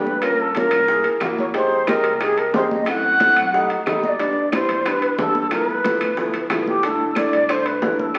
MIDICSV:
0, 0, Header, 1, 5, 480
1, 0, Start_track
1, 0, Key_signature, 0, "major"
1, 0, Tempo, 330396
1, 330, Time_signature, 4, 2, 24, 8
1, 11891, End_track
2, 0, Start_track
2, 0, Title_t, "Shakuhachi"
2, 0, Program_c, 0, 77
2, 0, Note_on_c, 0, 71, 81
2, 340, Note_on_c, 0, 70, 88
2, 362, Note_off_c, 0, 71, 0
2, 590, Note_on_c, 0, 69, 79
2, 612, Note_off_c, 0, 70, 0
2, 821, Note_off_c, 0, 69, 0
2, 832, Note_on_c, 0, 70, 77
2, 1724, Note_off_c, 0, 70, 0
2, 2019, Note_on_c, 0, 73, 83
2, 2106, Note_off_c, 0, 73, 0
2, 2265, Note_on_c, 0, 72, 88
2, 2723, Note_on_c, 0, 70, 85
2, 2744, Note_off_c, 0, 72, 0
2, 3208, Note_off_c, 0, 70, 0
2, 3215, Note_on_c, 0, 68, 88
2, 3452, Note_on_c, 0, 70, 79
2, 3474, Note_off_c, 0, 68, 0
2, 3690, Note_off_c, 0, 70, 0
2, 3698, Note_on_c, 0, 72, 90
2, 3785, Note_off_c, 0, 72, 0
2, 3950, Note_on_c, 0, 75, 80
2, 4165, Note_off_c, 0, 75, 0
2, 4187, Note_on_c, 0, 78, 111
2, 5409, Note_off_c, 0, 78, 0
2, 5868, Note_on_c, 0, 75, 70
2, 5925, Note_on_c, 0, 74, 77
2, 5939, Note_off_c, 0, 75, 0
2, 6531, Note_off_c, 0, 74, 0
2, 6582, Note_on_c, 0, 72, 86
2, 7070, Note_on_c, 0, 71, 81
2, 7092, Note_off_c, 0, 72, 0
2, 7538, Note_off_c, 0, 71, 0
2, 7547, Note_on_c, 0, 69, 81
2, 7987, Note_off_c, 0, 69, 0
2, 8019, Note_on_c, 0, 70, 89
2, 8251, Note_off_c, 0, 70, 0
2, 8251, Note_on_c, 0, 71, 89
2, 9398, Note_off_c, 0, 71, 0
2, 9685, Note_on_c, 0, 67, 73
2, 9940, Note_on_c, 0, 69, 85
2, 9962, Note_off_c, 0, 67, 0
2, 10415, Note_on_c, 0, 74, 83
2, 10437, Note_off_c, 0, 69, 0
2, 10890, Note_on_c, 0, 72, 89
2, 10912, Note_off_c, 0, 74, 0
2, 11124, Note_on_c, 0, 71, 77
2, 11146, Note_off_c, 0, 72, 0
2, 11618, Note_on_c, 0, 69, 72
2, 11640, Note_off_c, 0, 71, 0
2, 11836, Note_off_c, 0, 69, 0
2, 11845, Note_on_c, 0, 67, 75
2, 11891, Note_off_c, 0, 67, 0
2, 11891, End_track
3, 0, Start_track
3, 0, Title_t, "Grand piano"
3, 0, Program_c, 1, 0
3, 0, Note_on_c, 1, 57, 74
3, 0, Note_on_c, 1, 62, 64
3, 0, Note_on_c, 1, 67, 88
3, 178, Note_off_c, 1, 57, 0
3, 182, Note_off_c, 1, 62, 0
3, 188, Note_off_c, 1, 67, 0
3, 320, Note_on_c, 1, 58, 65
3, 322, Note_on_c, 1, 61, 68
3, 338, Note_on_c, 1, 65, 70
3, 661, Note_off_c, 1, 58, 0
3, 663, Note_off_c, 1, 61, 0
3, 670, Note_off_c, 1, 65, 0
3, 800, Note_on_c, 1, 58, 71
3, 810, Note_on_c, 1, 61, 63
3, 817, Note_on_c, 1, 65, 72
3, 1142, Note_off_c, 1, 58, 0
3, 1147, Note_off_c, 1, 61, 0
3, 1150, Note_off_c, 1, 65, 0
3, 1281, Note_on_c, 1, 58, 63
3, 1292, Note_on_c, 1, 64, 59
3, 1302, Note_on_c, 1, 68, 75
3, 1623, Note_off_c, 1, 58, 0
3, 1628, Note_off_c, 1, 64, 0
3, 1633, Note_off_c, 1, 68, 0
3, 1760, Note_on_c, 1, 58, 89
3, 1764, Note_on_c, 1, 64, 73
3, 1774, Note_on_c, 1, 66, 85
3, 2102, Note_off_c, 1, 58, 0
3, 2104, Note_off_c, 1, 64, 0
3, 2109, Note_off_c, 1, 66, 0
3, 2232, Note_on_c, 1, 56, 66
3, 2240, Note_on_c, 1, 63, 70
3, 2252, Note_on_c, 1, 67, 82
3, 2578, Note_off_c, 1, 56, 0
3, 2583, Note_off_c, 1, 63, 0
3, 2588, Note_off_c, 1, 67, 0
3, 2721, Note_on_c, 1, 56, 74
3, 2736, Note_on_c, 1, 63, 72
3, 2747, Note_on_c, 1, 67, 83
3, 3063, Note_off_c, 1, 56, 0
3, 3070, Note_off_c, 1, 63, 0
3, 3076, Note_off_c, 1, 67, 0
3, 3199, Note_on_c, 1, 56, 68
3, 3210, Note_on_c, 1, 63, 59
3, 3217, Note_on_c, 1, 67, 73
3, 3542, Note_off_c, 1, 56, 0
3, 3548, Note_off_c, 1, 63, 0
3, 3551, Note_off_c, 1, 67, 0
3, 3678, Note_on_c, 1, 56, 76
3, 3691, Note_on_c, 1, 63, 72
3, 3698, Note_on_c, 1, 67, 83
3, 4022, Note_off_c, 1, 56, 0
3, 4028, Note_off_c, 1, 63, 0
3, 4031, Note_off_c, 1, 67, 0
3, 4176, Note_on_c, 1, 57, 67
3, 4187, Note_on_c, 1, 60, 63
3, 4196, Note_on_c, 1, 64, 76
3, 4511, Note_off_c, 1, 57, 0
3, 4516, Note_off_c, 1, 60, 0
3, 4520, Note_off_c, 1, 64, 0
3, 4651, Note_on_c, 1, 57, 69
3, 4664, Note_on_c, 1, 60, 64
3, 4674, Note_on_c, 1, 64, 81
3, 4988, Note_off_c, 1, 57, 0
3, 4994, Note_off_c, 1, 60, 0
3, 5000, Note_off_c, 1, 64, 0
3, 5126, Note_on_c, 1, 55, 73
3, 5135, Note_on_c, 1, 57, 72
3, 5151, Note_on_c, 1, 63, 87
3, 5466, Note_off_c, 1, 55, 0
3, 5470, Note_off_c, 1, 57, 0
3, 5478, Note_off_c, 1, 63, 0
3, 5608, Note_on_c, 1, 55, 82
3, 5622, Note_on_c, 1, 57, 72
3, 5630, Note_on_c, 1, 63, 91
3, 5946, Note_off_c, 1, 55, 0
3, 5954, Note_off_c, 1, 57, 0
3, 5958, Note_off_c, 1, 63, 0
3, 6084, Note_on_c, 1, 55, 70
3, 6092, Note_on_c, 1, 59, 61
3, 6104, Note_on_c, 1, 62, 84
3, 6425, Note_off_c, 1, 55, 0
3, 6429, Note_off_c, 1, 59, 0
3, 6435, Note_off_c, 1, 62, 0
3, 6566, Note_on_c, 1, 55, 72
3, 6576, Note_on_c, 1, 59, 67
3, 6584, Note_on_c, 1, 64, 85
3, 6906, Note_off_c, 1, 55, 0
3, 6911, Note_off_c, 1, 59, 0
3, 6914, Note_off_c, 1, 64, 0
3, 7043, Note_on_c, 1, 55, 66
3, 7057, Note_on_c, 1, 59, 55
3, 7061, Note_on_c, 1, 62, 69
3, 7384, Note_off_c, 1, 55, 0
3, 7391, Note_off_c, 1, 59, 0
3, 7393, Note_off_c, 1, 62, 0
3, 7523, Note_on_c, 1, 55, 72
3, 7533, Note_on_c, 1, 59, 65
3, 7540, Note_on_c, 1, 62, 74
3, 7864, Note_off_c, 1, 55, 0
3, 7869, Note_off_c, 1, 59, 0
3, 7872, Note_off_c, 1, 62, 0
3, 8011, Note_on_c, 1, 53, 66
3, 8020, Note_on_c, 1, 57, 60
3, 8022, Note_on_c, 1, 59, 64
3, 8030, Note_on_c, 1, 64, 75
3, 8348, Note_off_c, 1, 53, 0
3, 8353, Note_off_c, 1, 57, 0
3, 8354, Note_off_c, 1, 59, 0
3, 8357, Note_off_c, 1, 64, 0
3, 8504, Note_on_c, 1, 53, 70
3, 8508, Note_on_c, 1, 57, 66
3, 8511, Note_on_c, 1, 59, 69
3, 8515, Note_on_c, 1, 64, 78
3, 8834, Note_off_c, 1, 53, 0
3, 8836, Note_off_c, 1, 57, 0
3, 8838, Note_off_c, 1, 59, 0
3, 8840, Note_off_c, 1, 64, 0
3, 8976, Note_on_c, 1, 53, 78
3, 8980, Note_on_c, 1, 57, 73
3, 8983, Note_on_c, 1, 59, 71
3, 8993, Note_on_c, 1, 64, 87
3, 9311, Note_off_c, 1, 53, 0
3, 9313, Note_off_c, 1, 57, 0
3, 9314, Note_off_c, 1, 59, 0
3, 9319, Note_off_c, 1, 64, 0
3, 9447, Note_on_c, 1, 53, 84
3, 9455, Note_on_c, 1, 57, 72
3, 9465, Note_on_c, 1, 59, 77
3, 9468, Note_on_c, 1, 64, 90
3, 9786, Note_off_c, 1, 53, 0
3, 9790, Note_off_c, 1, 57, 0
3, 9795, Note_off_c, 1, 59, 0
3, 9796, Note_off_c, 1, 64, 0
3, 9921, Note_on_c, 1, 57, 72
3, 9936, Note_on_c, 1, 62, 68
3, 9940, Note_on_c, 1, 64, 75
3, 10263, Note_off_c, 1, 57, 0
3, 10271, Note_off_c, 1, 62, 0
3, 10272, Note_off_c, 1, 64, 0
3, 10406, Note_on_c, 1, 57, 78
3, 10409, Note_on_c, 1, 62, 72
3, 10424, Note_on_c, 1, 64, 84
3, 10745, Note_off_c, 1, 57, 0
3, 10747, Note_off_c, 1, 62, 0
3, 10754, Note_off_c, 1, 64, 0
3, 10881, Note_on_c, 1, 57, 70
3, 10890, Note_on_c, 1, 62, 59
3, 10897, Note_on_c, 1, 64, 68
3, 11223, Note_off_c, 1, 57, 0
3, 11227, Note_off_c, 1, 62, 0
3, 11231, Note_off_c, 1, 64, 0
3, 11360, Note_on_c, 1, 57, 75
3, 11372, Note_on_c, 1, 62, 64
3, 11379, Note_on_c, 1, 64, 77
3, 11702, Note_off_c, 1, 57, 0
3, 11708, Note_off_c, 1, 62, 0
3, 11711, Note_off_c, 1, 64, 0
3, 11840, Note_on_c, 1, 58, 67
3, 11848, Note_on_c, 1, 62, 62
3, 11891, Note_off_c, 1, 58, 0
3, 11891, Note_off_c, 1, 62, 0
3, 11891, End_track
4, 0, Start_track
4, 0, Title_t, "Upright bass"
4, 0, Program_c, 2, 32
4, 0, Note_on_c, 2, 43, 84
4, 969, Note_off_c, 2, 43, 0
4, 1038, Note_on_c, 2, 36, 89
4, 1491, Note_off_c, 2, 36, 0
4, 1527, Note_on_c, 2, 39, 68
4, 1753, Note_off_c, 2, 39, 0
4, 1766, Note_on_c, 2, 41, 82
4, 2887, Note_off_c, 2, 41, 0
4, 2967, Note_on_c, 2, 36, 94
4, 3640, Note_off_c, 2, 36, 0
4, 3683, Note_on_c, 2, 30, 87
4, 4806, Note_off_c, 2, 30, 0
4, 4905, Note_on_c, 2, 35, 81
4, 5346, Note_off_c, 2, 35, 0
4, 5386, Note_on_c, 2, 39, 67
4, 5603, Note_off_c, 2, 39, 0
4, 5622, Note_on_c, 2, 40, 82
4, 6736, Note_off_c, 2, 40, 0
4, 6808, Note_on_c, 2, 40, 88
4, 7480, Note_off_c, 2, 40, 0
4, 7525, Note_on_c, 2, 43, 83
4, 8647, Note_off_c, 2, 43, 0
4, 8723, Note_on_c, 2, 38, 94
4, 9174, Note_off_c, 2, 38, 0
4, 9206, Note_on_c, 2, 38, 73
4, 9432, Note_off_c, 2, 38, 0
4, 9449, Note_on_c, 2, 36, 83
4, 10569, Note_off_c, 2, 36, 0
4, 10640, Note_on_c, 2, 36, 85
4, 11315, Note_off_c, 2, 36, 0
4, 11361, Note_on_c, 2, 40, 82
4, 11891, Note_off_c, 2, 40, 0
4, 11891, End_track
5, 0, Start_track
5, 0, Title_t, "Drums"
5, 96, Note_on_c, 9, 63, 80
5, 241, Note_off_c, 9, 63, 0
5, 316, Note_on_c, 9, 65, 80
5, 329, Note_on_c, 9, 75, 58
5, 331, Note_on_c, 9, 60, 52
5, 332, Note_on_c, 9, 63, 31
5, 461, Note_off_c, 9, 65, 0
5, 474, Note_off_c, 9, 75, 0
5, 477, Note_off_c, 9, 60, 0
5, 477, Note_off_c, 9, 63, 0
5, 579, Note_on_c, 9, 63, 33
5, 724, Note_off_c, 9, 63, 0
5, 794, Note_on_c, 9, 65, 63
5, 794, Note_on_c, 9, 66, 55
5, 820, Note_on_c, 9, 60, 52
5, 828, Note_on_c, 9, 63, 89
5, 939, Note_off_c, 9, 65, 0
5, 939, Note_off_c, 9, 66, 0
5, 965, Note_off_c, 9, 60, 0
5, 974, Note_off_c, 9, 63, 0
5, 1030, Note_on_c, 9, 65, 94
5, 1036, Note_on_c, 9, 75, 61
5, 1046, Note_on_c, 9, 60, 31
5, 1062, Note_on_c, 9, 63, 32
5, 1176, Note_off_c, 9, 65, 0
5, 1182, Note_off_c, 9, 75, 0
5, 1191, Note_off_c, 9, 60, 0
5, 1207, Note_off_c, 9, 63, 0
5, 1284, Note_on_c, 9, 60, 62
5, 1306, Note_on_c, 9, 63, 30
5, 1429, Note_off_c, 9, 60, 0
5, 1451, Note_off_c, 9, 63, 0
5, 1514, Note_on_c, 9, 65, 63
5, 1519, Note_on_c, 9, 60, 33
5, 1542, Note_on_c, 9, 63, 33
5, 1659, Note_off_c, 9, 65, 0
5, 1664, Note_off_c, 9, 60, 0
5, 1688, Note_off_c, 9, 63, 0
5, 1749, Note_on_c, 9, 75, 62
5, 1755, Note_on_c, 9, 65, 80
5, 1755, Note_on_c, 9, 66, 76
5, 1763, Note_on_c, 9, 60, 57
5, 1763, Note_on_c, 9, 61, 73
5, 1776, Note_on_c, 9, 63, 34
5, 1894, Note_off_c, 9, 75, 0
5, 1900, Note_off_c, 9, 65, 0
5, 1900, Note_off_c, 9, 66, 0
5, 1909, Note_off_c, 9, 60, 0
5, 1909, Note_off_c, 9, 61, 0
5, 1922, Note_off_c, 9, 63, 0
5, 2009, Note_on_c, 9, 60, 32
5, 2014, Note_on_c, 9, 63, 65
5, 2154, Note_off_c, 9, 60, 0
5, 2159, Note_off_c, 9, 63, 0
5, 2236, Note_on_c, 9, 65, 61
5, 2243, Note_on_c, 9, 60, 58
5, 2259, Note_on_c, 9, 63, 30
5, 2381, Note_off_c, 9, 65, 0
5, 2389, Note_off_c, 9, 60, 0
5, 2405, Note_off_c, 9, 63, 0
5, 2495, Note_on_c, 9, 63, 33
5, 2640, Note_off_c, 9, 63, 0
5, 2720, Note_on_c, 9, 75, 63
5, 2722, Note_on_c, 9, 65, 85
5, 2722, Note_on_c, 9, 66, 53
5, 2728, Note_on_c, 9, 60, 60
5, 2747, Note_on_c, 9, 63, 91
5, 2865, Note_off_c, 9, 75, 0
5, 2867, Note_off_c, 9, 65, 0
5, 2867, Note_off_c, 9, 66, 0
5, 2874, Note_off_c, 9, 60, 0
5, 2893, Note_off_c, 9, 63, 0
5, 2961, Note_on_c, 9, 65, 69
5, 3106, Note_off_c, 9, 65, 0
5, 3204, Note_on_c, 9, 60, 62
5, 3204, Note_on_c, 9, 65, 81
5, 3204, Note_on_c, 9, 75, 56
5, 3218, Note_on_c, 9, 63, 31
5, 3349, Note_off_c, 9, 60, 0
5, 3349, Note_off_c, 9, 65, 0
5, 3349, Note_off_c, 9, 75, 0
5, 3363, Note_off_c, 9, 63, 0
5, 3451, Note_on_c, 9, 65, 62
5, 3465, Note_on_c, 9, 63, 33
5, 3597, Note_off_c, 9, 65, 0
5, 3610, Note_off_c, 9, 63, 0
5, 3689, Note_on_c, 9, 66, 77
5, 3690, Note_on_c, 9, 60, 59
5, 3690, Note_on_c, 9, 61, 75
5, 3694, Note_on_c, 9, 63, 85
5, 3834, Note_off_c, 9, 66, 0
5, 3835, Note_off_c, 9, 60, 0
5, 3835, Note_off_c, 9, 61, 0
5, 3840, Note_off_c, 9, 63, 0
5, 3940, Note_on_c, 9, 63, 78
5, 4086, Note_off_c, 9, 63, 0
5, 4159, Note_on_c, 9, 65, 83
5, 4169, Note_on_c, 9, 75, 58
5, 4172, Note_on_c, 9, 60, 59
5, 4180, Note_on_c, 9, 63, 31
5, 4304, Note_off_c, 9, 65, 0
5, 4315, Note_off_c, 9, 75, 0
5, 4317, Note_off_c, 9, 60, 0
5, 4326, Note_off_c, 9, 63, 0
5, 4426, Note_on_c, 9, 63, 30
5, 4571, Note_off_c, 9, 63, 0
5, 4649, Note_on_c, 9, 65, 65
5, 4649, Note_on_c, 9, 66, 57
5, 4656, Note_on_c, 9, 63, 83
5, 4658, Note_on_c, 9, 60, 60
5, 4795, Note_off_c, 9, 65, 0
5, 4795, Note_off_c, 9, 66, 0
5, 4801, Note_off_c, 9, 63, 0
5, 4804, Note_off_c, 9, 60, 0
5, 4888, Note_on_c, 9, 65, 90
5, 4890, Note_on_c, 9, 75, 62
5, 4898, Note_on_c, 9, 63, 31
5, 4911, Note_on_c, 9, 60, 30
5, 5034, Note_off_c, 9, 65, 0
5, 5035, Note_off_c, 9, 75, 0
5, 5043, Note_off_c, 9, 63, 0
5, 5056, Note_off_c, 9, 60, 0
5, 5145, Note_on_c, 9, 63, 31
5, 5149, Note_on_c, 9, 60, 64
5, 5290, Note_off_c, 9, 63, 0
5, 5294, Note_off_c, 9, 60, 0
5, 5374, Note_on_c, 9, 65, 64
5, 5386, Note_on_c, 9, 60, 31
5, 5388, Note_on_c, 9, 63, 33
5, 5520, Note_off_c, 9, 65, 0
5, 5532, Note_off_c, 9, 60, 0
5, 5534, Note_off_c, 9, 63, 0
5, 5609, Note_on_c, 9, 75, 58
5, 5618, Note_on_c, 9, 60, 55
5, 5618, Note_on_c, 9, 61, 71
5, 5622, Note_on_c, 9, 65, 76
5, 5622, Note_on_c, 9, 66, 73
5, 5628, Note_on_c, 9, 63, 33
5, 5754, Note_off_c, 9, 75, 0
5, 5764, Note_off_c, 9, 60, 0
5, 5764, Note_off_c, 9, 61, 0
5, 5767, Note_off_c, 9, 65, 0
5, 5767, Note_off_c, 9, 66, 0
5, 5773, Note_off_c, 9, 63, 0
5, 5857, Note_on_c, 9, 60, 29
5, 5859, Note_on_c, 9, 63, 68
5, 6003, Note_off_c, 9, 60, 0
5, 6005, Note_off_c, 9, 63, 0
5, 6094, Note_on_c, 9, 60, 55
5, 6094, Note_on_c, 9, 63, 31
5, 6103, Note_on_c, 9, 65, 66
5, 6239, Note_off_c, 9, 60, 0
5, 6239, Note_off_c, 9, 63, 0
5, 6248, Note_off_c, 9, 65, 0
5, 6335, Note_on_c, 9, 63, 30
5, 6480, Note_off_c, 9, 63, 0
5, 6570, Note_on_c, 9, 75, 63
5, 6571, Note_on_c, 9, 60, 60
5, 6575, Note_on_c, 9, 65, 84
5, 6575, Note_on_c, 9, 66, 55
5, 6582, Note_on_c, 9, 63, 86
5, 6716, Note_off_c, 9, 75, 0
5, 6717, Note_off_c, 9, 60, 0
5, 6721, Note_off_c, 9, 65, 0
5, 6721, Note_off_c, 9, 66, 0
5, 6727, Note_off_c, 9, 63, 0
5, 6812, Note_on_c, 9, 65, 68
5, 6957, Note_off_c, 9, 65, 0
5, 7055, Note_on_c, 9, 60, 66
5, 7059, Note_on_c, 9, 63, 30
5, 7061, Note_on_c, 9, 65, 84
5, 7061, Note_on_c, 9, 75, 61
5, 7200, Note_off_c, 9, 60, 0
5, 7204, Note_off_c, 9, 63, 0
5, 7206, Note_off_c, 9, 65, 0
5, 7206, Note_off_c, 9, 75, 0
5, 7295, Note_on_c, 9, 65, 62
5, 7301, Note_on_c, 9, 63, 31
5, 7441, Note_off_c, 9, 65, 0
5, 7446, Note_off_c, 9, 63, 0
5, 7530, Note_on_c, 9, 63, 78
5, 7534, Note_on_c, 9, 60, 59
5, 7534, Note_on_c, 9, 61, 76
5, 7535, Note_on_c, 9, 66, 83
5, 7675, Note_off_c, 9, 63, 0
5, 7679, Note_off_c, 9, 60, 0
5, 7679, Note_off_c, 9, 61, 0
5, 7680, Note_off_c, 9, 66, 0
5, 7769, Note_on_c, 9, 63, 80
5, 7914, Note_off_c, 9, 63, 0
5, 8004, Note_on_c, 9, 65, 87
5, 8006, Note_on_c, 9, 75, 55
5, 8010, Note_on_c, 9, 60, 60
5, 8019, Note_on_c, 9, 63, 32
5, 8149, Note_off_c, 9, 65, 0
5, 8152, Note_off_c, 9, 75, 0
5, 8155, Note_off_c, 9, 60, 0
5, 8164, Note_off_c, 9, 63, 0
5, 8263, Note_on_c, 9, 63, 31
5, 8408, Note_off_c, 9, 63, 0
5, 8491, Note_on_c, 9, 65, 67
5, 8491, Note_on_c, 9, 66, 52
5, 8494, Note_on_c, 9, 60, 60
5, 8507, Note_on_c, 9, 63, 93
5, 8636, Note_off_c, 9, 65, 0
5, 8636, Note_off_c, 9, 66, 0
5, 8639, Note_off_c, 9, 60, 0
5, 8652, Note_off_c, 9, 63, 0
5, 8722, Note_on_c, 9, 60, 33
5, 8728, Note_on_c, 9, 75, 65
5, 8729, Note_on_c, 9, 65, 88
5, 8746, Note_on_c, 9, 63, 32
5, 8867, Note_off_c, 9, 60, 0
5, 8873, Note_off_c, 9, 75, 0
5, 8874, Note_off_c, 9, 65, 0
5, 8891, Note_off_c, 9, 63, 0
5, 8967, Note_on_c, 9, 60, 61
5, 8975, Note_on_c, 9, 63, 31
5, 9112, Note_off_c, 9, 60, 0
5, 9120, Note_off_c, 9, 63, 0
5, 9206, Note_on_c, 9, 65, 67
5, 9208, Note_on_c, 9, 60, 31
5, 9211, Note_on_c, 9, 63, 36
5, 9351, Note_off_c, 9, 65, 0
5, 9354, Note_off_c, 9, 60, 0
5, 9357, Note_off_c, 9, 63, 0
5, 9441, Note_on_c, 9, 75, 59
5, 9442, Note_on_c, 9, 60, 62
5, 9442, Note_on_c, 9, 61, 71
5, 9444, Note_on_c, 9, 65, 88
5, 9444, Note_on_c, 9, 66, 75
5, 9467, Note_on_c, 9, 63, 32
5, 9587, Note_off_c, 9, 60, 0
5, 9587, Note_off_c, 9, 61, 0
5, 9587, Note_off_c, 9, 75, 0
5, 9590, Note_off_c, 9, 65, 0
5, 9590, Note_off_c, 9, 66, 0
5, 9612, Note_off_c, 9, 63, 0
5, 9685, Note_on_c, 9, 60, 32
5, 9694, Note_on_c, 9, 63, 70
5, 9830, Note_off_c, 9, 60, 0
5, 9839, Note_off_c, 9, 63, 0
5, 9926, Note_on_c, 9, 60, 59
5, 9928, Note_on_c, 9, 65, 66
5, 9937, Note_on_c, 9, 63, 32
5, 10071, Note_off_c, 9, 60, 0
5, 10073, Note_off_c, 9, 65, 0
5, 10082, Note_off_c, 9, 63, 0
5, 10180, Note_on_c, 9, 63, 33
5, 10325, Note_off_c, 9, 63, 0
5, 10392, Note_on_c, 9, 75, 61
5, 10400, Note_on_c, 9, 60, 55
5, 10405, Note_on_c, 9, 65, 85
5, 10405, Note_on_c, 9, 66, 54
5, 10411, Note_on_c, 9, 63, 89
5, 10537, Note_off_c, 9, 75, 0
5, 10545, Note_off_c, 9, 60, 0
5, 10550, Note_off_c, 9, 65, 0
5, 10550, Note_off_c, 9, 66, 0
5, 10556, Note_off_c, 9, 63, 0
5, 10652, Note_on_c, 9, 65, 68
5, 10797, Note_off_c, 9, 65, 0
5, 10880, Note_on_c, 9, 75, 65
5, 10883, Note_on_c, 9, 65, 84
5, 10887, Note_on_c, 9, 60, 61
5, 10903, Note_on_c, 9, 63, 32
5, 11026, Note_off_c, 9, 75, 0
5, 11029, Note_off_c, 9, 65, 0
5, 11033, Note_off_c, 9, 60, 0
5, 11048, Note_off_c, 9, 63, 0
5, 11125, Note_on_c, 9, 65, 70
5, 11129, Note_on_c, 9, 63, 36
5, 11270, Note_off_c, 9, 65, 0
5, 11275, Note_off_c, 9, 63, 0
5, 11363, Note_on_c, 9, 60, 54
5, 11363, Note_on_c, 9, 61, 66
5, 11364, Note_on_c, 9, 66, 70
5, 11374, Note_on_c, 9, 63, 84
5, 11508, Note_off_c, 9, 60, 0
5, 11508, Note_off_c, 9, 61, 0
5, 11509, Note_off_c, 9, 66, 0
5, 11519, Note_off_c, 9, 63, 0
5, 11613, Note_on_c, 9, 63, 80
5, 11758, Note_off_c, 9, 63, 0
5, 11832, Note_on_c, 9, 75, 58
5, 11838, Note_on_c, 9, 65, 83
5, 11840, Note_on_c, 9, 60, 57
5, 11891, Note_off_c, 9, 60, 0
5, 11891, Note_off_c, 9, 65, 0
5, 11891, Note_off_c, 9, 75, 0
5, 11891, End_track
0, 0, End_of_file